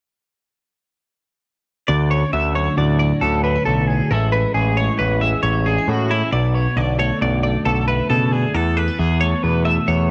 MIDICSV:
0, 0, Header, 1, 4, 480
1, 0, Start_track
1, 0, Tempo, 443787
1, 2044, Time_signature, 5, 2, 24, 8
1, 10933, End_track
2, 0, Start_track
2, 0, Title_t, "Clean electric guitar"
2, 0, Program_c, 0, 27
2, 2036, Note_on_c, 0, 74, 76
2, 2277, Note_off_c, 0, 74, 0
2, 2281, Note_on_c, 0, 73, 69
2, 2517, Note_off_c, 0, 73, 0
2, 2522, Note_on_c, 0, 76, 71
2, 2758, Note_off_c, 0, 76, 0
2, 2762, Note_on_c, 0, 73, 68
2, 3002, Note_off_c, 0, 73, 0
2, 3006, Note_on_c, 0, 74, 70
2, 3226, Note_off_c, 0, 74, 0
2, 3239, Note_on_c, 0, 74, 70
2, 3475, Note_on_c, 0, 69, 73
2, 3481, Note_off_c, 0, 74, 0
2, 3714, Note_off_c, 0, 69, 0
2, 3718, Note_on_c, 0, 71, 66
2, 3949, Note_off_c, 0, 71, 0
2, 3953, Note_on_c, 0, 69, 71
2, 4192, Note_off_c, 0, 69, 0
2, 4192, Note_on_c, 0, 68, 68
2, 4443, Note_off_c, 0, 68, 0
2, 4443, Note_on_c, 0, 69, 78
2, 4671, Note_off_c, 0, 69, 0
2, 4676, Note_on_c, 0, 71, 71
2, 4910, Note_off_c, 0, 71, 0
2, 4915, Note_on_c, 0, 68, 75
2, 5159, Note_off_c, 0, 68, 0
2, 5160, Note_on_c, 0, 73, 69
2, 5394, Note_on_c, 0, 71, 72
2, 5402, Note_off_c, 0, 73, 0
2, 5638, Note_off_c, 0, 71, 0
2, 5639, Note_on_c, 0, 76, 69
2, 5866, Note_off_c, 0, 76, 0
2, 5870, Note_on_c, 0, 73, 80
2, 6116, Note_off_c, 0, 73, 0
2, 6122, Note_on_c, 0, 68, 68
2, 6373, Note_off_c, 0, 68, 0
2, 6373, Note_on_c, 0, 66, 76
2, 6606, Note_on_c, 0, 64, 72
2, 6608, Note_off_c, 0, 66, 0
2, 6837, Note_off_c, 0, 64, 0
2, 6841, Note_on_c, 0, 74, 81
2, 7078, Note_off_c, 0, 74, 0
2, 7078, Note_on_c, 0, 73, 71
2, 7322, Note_off_c, 0, 73, 0
2, 7322, Note_on_c, 0, 74, 72
2, 7561, Note_off_c, 0, 74, 0
2, 7565, Note_on_c, 0, 73, 64
2, 7804, Note_off_c, 0, 73, 0
2, 7810, Note_on_c, 0, 74, 71
2, 8027, Note_off_c, 0, 74, 0
2, 8040, Note_on_c, 0, 74, 65
2, 8275, Note_off_c, 0, 74, 0
2, 8280, Note_on_c, 0, 69, 79
2, 8517, Note_off_c, 0, 69, 0
2, 8521, Note_on_c, 0, 71, 67
2, 8754, Note_off_c, 0, 71, 0
2, 8758, Note_on_c, 0, 69, 73
2, 8997, Note_off_c, 0, 69, 0
2, 8997, Note_on_c, 0, 68, 67
2, 9243, Note_off_c, 0, 68, 0
2, 9243, Note_on_c, 0, 69, 77
2, 9484, Note_off_c, 0, 69, 0
2, 9484, Note_on_c, 0, 71, 69
2, 9721, Note_off_c, 0, 71, 0
2, 9721, Note_on_c, 0, 68, 70
2, 9953, Note_off_c, 0, 68, 0
2, 9958, Note_on_c, 0, 73, 64
2, 10199, Note_off_c, 0, 73, 0
2, 10199, Note_on_c, 0, 71, 70
2, 10436, Note_off_c, 0, 71, 0
2, 10441, Note_on_c, 0, 76, 65
2, 10683, Note_off_c, 0, 76, 0
2, 10685, Note_on_c, 0, 73, 77
2, 10918, Note_off_c, 0, 73, 0
2, 10933, End_track
3, 0, Start_track
3, 0, Title_t, "Clean electric guitar"
3, 0, Program_c, 1, 27
3, 2037, Note_on_c, 1, 38, 70
3, 2290, Note_on_c, 1, 61, 54
3, 2522, Note_on_c, 1, 50, 60
3, 2761, Note_on_c, 1, 54, 51
3, 3005, Note_on_c, 1, 45, 56
3, 3236, Note_off_c, 1, 54, 0
3, 3249, Note_on_c, 1, 54, 53
3, 3471, Note_off_c, 1, 61, 0
3, 3484, Note_on_c, 1, 61, 53
3, 3728, Note_on_c, 1, 62, 53
3, 3847, Note_off_c, 1, 62, 0
3, 3847, Note_on_c, 1, 64, 44
3, 3948, Note_off_c, 1, 38, 0
3, 3961, Note_on_c, 1, 38, 67
3, 4204, Note_off_c, 1, 61, 0
3, 4221, Note_on_c, 1, 61, 52
3, 4424, Note_off_c, 1, 61, 0
3, 4435, Note_off_c, 1, 45, 0
3, 4442, Note_off_c, 1, 38, 0
3, 4443, Note_off_c, 1, 50, 0
3, 4445, Note_off_c, 1, 64, 0
3, 4446, Note_off_c, 1, 54, 0
3, 4448, Note_on_c, 1, 45, 72
3, 4454, Note_on_c, 1, 52, 58
3, 4466, Note_on_c, 1, 56, 61
3, 4474, Note_on_c, 1, 61, 59
3, 4481, Note_on_c, 1, 64, 66
3, 4692, Note_off_c, 1, 61, 0
3, 4705, Note_on_c, 1, 61, 55
3, 4922, Note_off_c, 1, 52, 0
3, 4935, Note_on_c, 1, 52, 56
3, 5171, Note_off_c, 1, 56, 0
3, 5184, Note_on_c, 1, 56, 52
3, 5405, Note_off_c, 1, 45, 0
3, 5410, Note_on_c, 1, 40, 56
3, 5643, Note_off_c, 1, 56, 0
3, 5656, Note_on_c, 1, 56, 54
3, 5880, Note_off_c, 1, 61, 0
3, 5893, Note_on_c, 1, 61, 54
3, 6118, Note_off_c, 1, 64, 0
3, 6122, Note_on_c, 1, 62, 57
3, 6255, Note_off_c, 1, 62, 0
3, 6255, Note_on_c, 1, 64, 48
3, 6366, Note_off_c, 1, 40, 0
3, 6370, Note_on_c, 1, 45, 69
3, 6602, Note_off_c, 1, 61, 0
3, 6615, Note_on_c, 1, 61, 54
3, 6820, Note_off_c, 1, 52, 0
3, 6820, Note_off_c, 1, 56, 0
3, 6820, Note_off_c, 1, 61, 0
3, 6832, Note_off_c, 1, 45, 0
3, 6837, Note_on_c, 1, 47, 71
3, 6849, Note_off_c, 1, 64, 0
3, 7087, Note_on_c, 1, 59, 54
3, 7320, Note_off_c, 1, 47, 0
3, 7323, Note_on_c, 1, 50, 58
3, 7564, Note_on_c, 1, 57, 53
3, 7794, Note_on_c, 1, 42, 56
3, 8046, Note_off_c, 1, 57, 0
3, 8050, Note_on_c, 1, 57, 53
3, 8269, Note_off_c, 1, 59, 0
3, 8282, Note_on_c, 1, 59, 52
3, 8536, Note_on_c, 1, 64, 54
3, 8770, Note_on_c, 1, 49, 60
3, 8990, Note_off_c, 1, 50, 0
3, 9003, Note_on_c, 1, 50, 58
3, 9006, Note_off_c, 1, 49, 0
3, 9210, Note_off_c, 1, 42, 0
3, 9214, Note_off_c, 1, 59, 0
3, 9221, Note_off_c, 1, 64, 0
3, 9240, Note_on_c, 1, 40, 69
3, 9243, Note_off_c, 1, 50, 0
3, 9486, Note_off_c, 1, 57, 0
3, 9486, Note_on_c, 1, 57, 49
3, 9603, Note_off_c, 1, 57, 0
3, 9603, Note_on_c, 1, 59, 44
3, 9722, Note_on_c, 1, 52, 59
3, 9980, Note_on_c, 1, 57, 51
3, 10208, Note_on_c, 1, 47, 55
3, 10442, Note_off_c, 1, 57, 0
3, 10447, Note_on_c, 1, 57, 54
3, 10685, Note_off_c, 1, 59, 0
3, 10700, Note_on_c, 1, 59, 51
3, 10933, Note_off_c, 1, 40, 0
3, 10933, Note_off_c, 1, 47, 0
3, 10933, Note_off_c, 1, 52, 0
3, 10933, Note_off_c, 1, 57, 0
3, 10933, Note_off_c, 1, 59, 0
3, 10933, End_track
4, 0, Start_track
4, 0, Title_t, "Picked electric bass"
4, 0, Program_c, 2, 34
4, 2044, Note_on_c, 2, 38, 84
4, 2409, Note_off_c, 2, 38, 0
4, 2524, Note_on_c, 2, 38, 80
4, 2889, Note_off_c, 2, 38, 0
4, 3000, Note_on_c, 2, 38, 79
4, 3367, Note_off_c, 2, 38, 0
4, 3482, Note_on_c, 2, 38, 85
4, 3848, Note_off_c, 2, 38, 0
4, 3960, Note_on_c, 2, 35, 80
4, 4327, Note_off_c, 2, 35, 0
4, 4442, Note_on_c, 2, 33, 85
4, 4808, Note_off_c, 2, 33, 0
4, 4914, Note_on_c, 2, 33, 78
4, 5283, Note_off_c, 2, 33, 0
4, 5401, Note_on_c, 2, 33, 80
4, 5767, Note_off_c, 2, 33, 0
4, 5875, Note_on_c, 2, 33, 86
4, 6243, Note_off_c, 2, 33, 0
4, 6358, Note_on_c, 2, 45, 77
4, 6725, Note_off_c, 2, 45, 0
4, 6840, Note_on_c, 2, 35, 82
4, 7206, Note_off_c, 2, 35, 0
4, 7316, Note_on_c, 2, 35, 73
4, 7684, Note_off_c, 2, 35, 0
4, 7808, Note_on_c, 2, 35, 87
4, 8171, Note_off_c, 2, 35, 0
4, 8285, Note_on_c, 2, 35, 84
4, 8649, Note_off_c, 2, 35, 0
4, 8764, Note_on_c, 2, 47, 76
4, 9129, Note_off_c, 2, 47, 0
4, 9243, Note_on_c, 2, 40, 80
4, 9609, Note_off_c, 2, 40, 0
4, 9727, Note_on_c, 2, 40, 79
4, 10091, Note_off_c, 2, 40, 0
4, 10206, Note_on_c, 2, 40, 81
4, 10571, Note_off_c, 2, 40, 0
4, 10686, Note_on_c, 2, 40, 77
4, 10933, Note_off_c, 2, 40, 0
4, 10933, End_track
0, 0, End_of_file